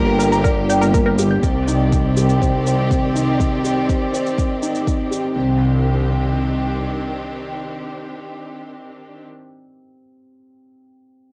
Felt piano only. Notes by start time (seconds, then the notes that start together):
Already playing: A#3 G4 A#4 D5
0.19 A#4
0.44 D5
0.69 D5
0.94 A#3
1.19 G4
1.44 C4
1.67 D#4
1.92 C4
2.17 G4
2.41 C5
2.67 C5
2.91 C4
3.15 D#4
3.39 C4
3.64 G4
3.89 C5
4.13 C5
4.38 C4
4.62 D#4
4.87 C4
5.11 G4
5.36 C4